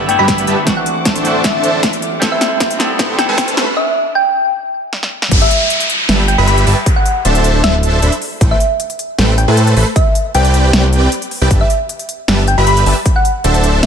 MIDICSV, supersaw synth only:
0, 0, Header, 1, 2, 480
1, 0, Start_track
1, 0, Key_signature, 1, "major"
1, 0, Tempo, 387097
1, 830, Time_signature, 4, 2, 24, 8
1, 17188, End_track
2, 0, Start_track
2, 0, Title_t, "Supersaw synth"
2, 0, Program_c, 0, 81
2, 234, Note_on_c, 0, 67, 86
2, 235, Note_on_c, 0, 55, 88
2, 235, Note_on_c, 0, 71, 83
2, 235, Note_on_c, 0, 76, 85
2, 235, Note_on_c, 0, 83, 96
2, 562, Note_off_c, 0, 55, 0
2, 562, Note_off_c, 0, 67, 0
2, 562, Note_off_c, 0, 71, 0
2, 562, Note_off_c, 0, 76, 0
2, 562, Note_off_c, 0, 83, 0
2, 590, Note_on_c, 0, 55, 71
2, 590, Note_on_c, 0, 67, 65
2, 590, Note_on_c, 0, 71, 66
2, 590, Note_on_c, 0, 76, 70
2, 590, Note_on_c, 0, 81, 81
2, 709, Note_off_c, 0, 55, 0
2, 709, Note_off_c, 0, 67, 0
2, 709, Note_off_c, 0, 71, 0
2, 709, Note_off_c, 0, 76, 0
2, 709, Note_off_c, 0, 81, 0
2, 1310, Note_on_c, 0, 62, 79
2, 1310, Note_on_c, 0, 69, 76
2, 1310, Note_on_c, 0, 72, 74
2, 1310, Note_on_c, 0, 76, 76
2, 1310, Note_on_c, 0, 81, 89
2, 1762, Note_off_c, 0, 62, 0
2, 1762, Note_off_c, 0, 69, 0
2, 1762, Note_off_c, 0, 72, 0
2, 1762, Note_off_c, 0, 76, 0
2, 1762, Note_off_c, 0, 81, 0
2, 1790, Note_on_c, 0, 76, 83
2, 1791, Note_on_c, 0, 62, 89
2, 1791, Note_on_c, 0, 69, 84
2, 1791, Note_on_c, 0, 72, 82
2, 1791, Note_on_c, 0, 81, 102
2, 2243, Note_off_c, 0, 62, 0
2, 2243, Note_off_c, 0, 69, 0
2, 2243, Note_off_c, 0, 72, 0
2, 2243, Note_off_c, 0, 76, 0
2, 2243, Note_off_c, 0, 81, 0
2, 2269, Note_on_c, 0, 76, 78
2, 2270, Note_on_c, 0, 62, 84
2, 2270, Note_on_c, 0, 69, 78
2, 2270, Note_on_c, 0, 72, 74
2, 2270, Note_on_c, 0, 83, 96
2, 2388, Note_off_c, 0, 62, 0
2, 2388, Note_off_c, 0, 72, 0
2, 2388, Note_off_c, 0, 76, 0
2, 2388, Note_off_c, 0, 83, 0
2, 2389, Note_off_c, 0, 69, 0
2, 2749, Note_on_c, 0, 57, 70
2, 2749, Note_on_c, 0, 69, 67
2, 2749, Note_on_c, 0, 71, 68
2, 2749, Note_on_c, 0, 79, 83
2, 2750, Note_on_c, 0, 72, 63
2, 2934, Note_off_c, 0, 57, 0
2, 2934, Note_off_c, 0, 69, 0
2, 2934, Note_off_c, 0, 71, 0
2, 2934, Note_off_c, 0, 72, 0
2, 2934, Note_off_c, 0, 79, 0
2, 3710, Note_on_c, 0, 69, 72
2, 3710, Note_on_c, 0, 71, 73
2, 3710, Note_on_c, 0, 72, 69
2, 3710, Note_on_c, 0, 79, 85
2, 3711, Note_on_c, 0, 57, 73
2, 3895, Note_off_c, 0, 57, 0
2, 3895, Note_off_c, 0, 69, 0
2, 3895, Note_off_c, 0, 71, 0
2, 3895, Note_off_c, 0, 72, 0
2, 3895, Note_off_c, 0, 79, 0
2, 4075, Note_on_c, 0, 57, 91
2, 4075, Note_on_c, 0, 69, 82
2, 4075, Note_on_c, 0, 71, 82
2, 4075, Note_on_c, 0, 72, 84
2, 4075, Note_on_c, 0, 81, 104
2, 4402, Note_off_c, 0, 69, 0
2, 4403, Note_off_c, 0, 57, 0
2, 4403, Note_off_c, 0, 71, 0
2, 4403, Note_off_c, 0, 72, 0
2, 4403, Note_off_c, 0, 81, 0
2, 4431, Note_on_c, 0, 57, 76
2, 4431, Note_on_c, 0, 69, 66
2, 4431, Note_on_c, 0, 71, 71
2, 4431, Note_on_c, 0, 72, 71
2, 4431, Note_on_c, 0, 83, 81
2, 4549, Note_off_c, 0, 57, 0
2, 4549, Note_off_c, 0, 69, 0
2, 4549, Note_off_c, 0, 71, 0
2, 4549, Note_off_c, 0, 72, 0
2, 4549, Note_off_c, 0, 83, 0
2, 6590, Note_on_c, 0, 67, 64
2, 6590, Note_on_c, 0, 76, 64
2, 6591, Note_on_c, 0, 55, 75
2, 6591, Note_on_c, 0, 71, 66
2, 6591, Note_on_c, 0, 81, 83
2, 6775, Note_off_c, 0, 55, 0
2, 6775, Note_off_c, 0, 67, 0
2, 6775, Note_off_c, 0, 71, 0
2, 6775, Note_off_c, 0, 76, 0
2, 6775, Note_off_c, 0, 81, 0
2, 7550, Note_on_c, 0, 55, 79
2, 7550, Note_on_c, 0, 71, 70
2, 7550, Note_on_c, 0, 81, 84
2, 7551, Note_on_c, 0, 67, 69
2, 7551, Note_on_c, 0, 76, 71
2, 7735, Note_off_c, 0, 55, 0
2, 7735, Note_off_c, 0, 67, 0
2, 7735, Note_off_c, 0, 71, 0
2, 7735, Note_off_c, 0, 76, 0
2, 7735, Note_off_c, 0, 81, 0
2, 7914, Note_on_c, 0, 71, 84
2, 7914, Note_on_c, 0, 83, 96
2, 7915, Note_on_c, 0, 55, 92
2, 7915, Note_on_c, 0, 67, 83
2, 7915, Note_on_c, 0, 76, 85
2, 8242, Note_off_c, 0, 71, 0
2, 8242, Note_off_c, 0, 76, 0
2, 8242, Note_off_c, 0, 83, 0
2, 8243, Note_off_c, 0, 55, 0
2, 8243, Note_off_c, 0, 67, 0
2, 8270, Note_on_c, 0, 55, 73
2, 8270, Note_on_c, 0, 67, 69
2, 8270, Note_on_c, 0, 71, 66
2, 8270, Note_on_c, 0, 76, 66
2, 8270, Note_on_c, 0, 81, 82
2, 8389, Note_off_c, 0, 55, 0
2, 8389, Note_off_c, 0, 67, 0
2, 8389, Note_off_c, 0, 71, 0
2, 8389, Note_off_c, 0, 76, 0
2, 8389, Note_off_c, 0, 81, 0
2, 8989, Note_on_c, 0, 72, 70
2, 8990, Note_on_c, 0, 62, 83
2, 8990, Note_on_c, 0, 69, 72
2, 8990, Note_on_c, 0, 76, 72
2, 8990, Note_on_c, 0, 81, 85
2, 9442, Note_off_c, 0, 62, 0
2, 9442, Note_off_c, 0, 69, 0
2, 9442, Note_off_c, 0, 72, 0
2, 9442, Note_off_c, 0, 76, 0
2, 9443, Note_off_c, 0, 81, 0
2, 9469, Note_on_c, 0, 62, 91
2, 9469, Note_on_c, 0, 69, 83
2, 9469, Note_on_c, 0, 72, 81
2, 9469, Note_on_c, 0, 76, 84
2, 9469, Note_on_c, 0, 81, 99
2, 9922, Note_off_c, 0, 62, 0
2, 9922, Note_off_c, 0, 69, 0
2, 9922, Note_off_c, 0, 72, 0
2, 9922, Note_off_c, 0, 76, 0
2, 9922, Note_off_c, 0, 81, 0
2, 9949, Note_on_c, 0, 62, 84
2, 9949, Note_on_c, 0, 69, 76
2, 9949, Note_on_c, 0, 72, 77
2, 9949, Note_on_c, 0, 76, 75
2, 9949, Note_on_c, 0, 83, 91
2, 10068, Note_off_c, 0, 62, 0
2, 10068, Note_off_c, 0, 69, 0
2, 10068, Note_off_c, 0, 72, 0
2, 10068, Note_off_c, 0, 76, 0
2, 10068, Note_off_c, 0, 83, 0
2, 10429, Note_on_c, 0, 57, 73
2, 10429, Note_on_c, 0, 69, 66
2, 10429, Note_on_c, 0, 71, 69
2, 10429, Note_on_c, 0, 72, 65
2, 10430, Note_on_c, 0, 79, 76
2, 10614, Note_off_c, 0, 57, 0
2, 10614, Note_off_c, 0, 69, 0
2, 10614, Note_off_c, 0, 71, 0
2, 10614, Note_off_c, 0, 72, 0
2, 10614, Note_off_c, 0, 79, 0
2, 11389, Note_on_c, 0, 57, 78
2, 11389, Note_on_c, 0, 69, 71
2, 11389, Note_on_c, 0, 71, 70
2, 11389, Note_on_c, 0, 72, 71
2, 11389, Note_on_c, 0, 79, 80
2, 11574, Note_off_c, 0, 57, 0
2, 11574, Note_off_c, 0, 69, 0
2, 11574, Note_off_c, 0, 71, 0
2, 11574, Note_off_c, 0, 72, 0
2, 11574, Note_off_c, 0, 79, 0
2, 11753, Note_on_c, 0, 57, 94
2, 11753, Note_on_c, 0, 81, 98
2, 11754, Note_on_c, 0, 69, 82
2, 11754, Note_on_c, 0, 71, 83
2, 11754, Note_on_c, 0, 72, 84
2, 12081, Note_off_c, 0, 57, 0
2, 12082, Note_off_c, 0, 69, 0
2, 12082, Note_off_c, 0, 71, 0
2, 12082, Note_off_c, 0, 72, 0
2, 12082, Note_off_c, 0, 81, 0
2, 12108, Note_on_c, 0, 57, 75
2, 12108, Note_on_c, 0, 71, 71
2, 12108, Note_on_c, 0, 83, 83
2, 12109, Note_on_c, 0, 69, 72
2, 12109, Note_on_c, 0, 72, 72
2, 12228, Note_off_c, 0, 57, 0
2, 12228, Note_off_c, 0, 69, 0
2, 12228, Note_off_c, 0, 71, 0
2, 12228, Note_off_c, 0, 72, 0
2, 12228, Note_off_c, 0, 83, 0
2, 12828, Note_on_c, 0, 71, 72
2, 12829, Note_on_c, 0, 60, 80
2, 12829, Note_on_c, 0, 67, 77
2, 12829, Note_on_c, 0, 74, 72
2, 12829, Note_on_c, 0, 79, 89
2, 13282, Note_off_c, 0, 60, 0
2, 13282, Note_off_c, 0, 67, 0
2, 13282, Note_off_c, 0, 71, 0
2, 13282, Note_off_c, 0, 74, 0
2, 13282, Note_off_c, 0, 79, 0
2, 13308, Note_on_c, 0, 60, 92
2, 13309, Note_on_c, 0, 67, 83
2, 13309, Note_on_c, 0, 71, 81
2, 13309, Note_on_c, 0, 74, 88
2, 13309, Note_on_c, 0, 79, 99
2, 13762, Note_off_c, 0, 60, 0
2, 13762, Note_off_c, 0, 67, 0
2, 13762, Note_off_c, 0, 71, 0
2, 13762, Note_off_c, 0, 74, 0
2, 13762, Note_off_c, 0, 79, 0
2, 14154, Note_on_c, 0, 79, 111
2, 14155, Note_on_c, 0, 60, 99
2, 14155, Note_on_c, 0, 67, 85
2, 14155, Note_on_c, 0, 71, 91
2, 14155, Note_on_c, 0, 74, 90
2, 14242, Note_off_c, 0, 60, 0
2, 14242, Note_off_c, 0, 67, 0
2, 14242, Note_off_c, 0, 71, 0
2, 14242, Note_off_c, 0, 74, 0
2, 14242, Note_off_c, 0, 79, 0
2, 14269, Note_on_c, 0, 67, 69
2, 14270, Note_on_c, 0, 55, 73
2, 14270, Note_on_c, 0, 71, 67
2, 14270, Note_on_c, 0, 76, 66
2, 14270, Note_on_c, 0, 81, 78
2, 14454, Note_off_c, 0, 55, 0
2, 14454, Note_off_c, 0, 67, 0
2, 14454, Note_off_c, 0, 71, 0
2, 14454, Note_off_c, 0, 76, 0
2, 14455, Note_off_c, 0, 81, 0
2, 15230, Note_on_c, 0, 55, 76
2, 15230, Note_on_c, 0, 67, 69
2, 15230, Note_on_c, 0, 71, 69
2, 15230, Note_on_c, 0, 81, 85
2, 15231, Note_on_c, 0, 76, 71
2, 15415, Note_off_c, 0, 55, 0
2, 15415, Note_off_c, 0, 67, 0
2, 15415, Note_off_c, 0, 71, 0
2, 15415, Note_off_c, 0, 76, 0
2, 15415, Note_off_c, 0, 81, 0
2, 15595, Note_on_c, 0, 55, 91
2, 15595, Note_on_c, 0, 67, 80
2, 15595, Note_on_c, 0, 71, 87
2, 15595, Note_on_c, 0, 76, 84
2, 15595, Note_on_c, 0, 83, 102
2, 15922, Note_off_c, 0, 71, 0
2, 15922, Note_off_c, 0, 83, 0
2, 15923, Note_off_c, 0, 55, 0
2, 15923, Note_off_c, 0, 67, 0
2, 15923, Note_off_c, 0, 76, 0
2, 15950, Note_on_c, 0, 55, 77
2, 15950, Note_on_c, 0, 67, 68
2, 15950, Note_on_c, 0, 71, 69
2, 15950, Note_on_c, 0, 76, 69
2, 15950, Note_on_c, 0, 81, 82
2, 16068, Note_off_c, 0, 71, 0
2, 16069, Note_off_c, 0, 55, 0
2, 16069, Note_off_c, 0, 67, 0
2, 16069, Note_off_c, 0, 76, 0
2, 16069, Note_off_c, 0, 81, 0
2, 16669, Note_on_c, 0, 72, 75
2, 16670, Note_on_c, 0, 62, 86
2, 16670, Note_on_c, 0, 69, 75
2, 16670, Note_on_c, 0, 76, 74
2, 16670, Note_on_c, 0, 81, 90
2, 17122, Note_off_c, 0, 69, 0
2, 17122, Note_off_c, 0, 72, 0
2, 17122, Note_off_c, 0, 76, 0
2, 17122, Note_off_c, 0, 81, 0
2, 17123, Note_off_c, 0, 62, 0
2, 17149, Note_on_c, 0, 72, 81
2, 17149, Note_on_c, 0, 76, 83
2, 17150, Note_on_c, 0, 62, 93
2, 17150, Note_on_c, 0, 69, 86
2, 17150, Note_on_c, 0, 81, 103
2, 17188, Note_off_c, 0, 62, 0
2, 17188, Note_off_c, 0, 69, 0
2, 17188, Note_off_c, 0, 72, 0
2, 17188, Note_off_c, 0, 76, 0
2, 17188, Note_off_c, 0, 81, 0
2, 17188, End_track
0, 0, End_of_file